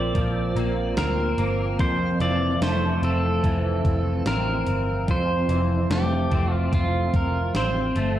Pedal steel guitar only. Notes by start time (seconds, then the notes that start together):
Already playing: D5
0.98 A#4
1.80 C5
2.21 D5
2.63 C5
3.05 A4
4.27 A#4
5.11 C5
5.92 G4
6.53 F4
6.74 F4
7.16 A#4
7.57 C5